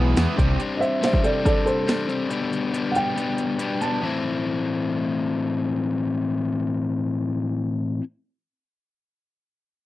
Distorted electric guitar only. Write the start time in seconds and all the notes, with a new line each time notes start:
Already playing: B3 E4 G#4
0.17 B3 E4 G#4
0.38 G3 C4 D4 G4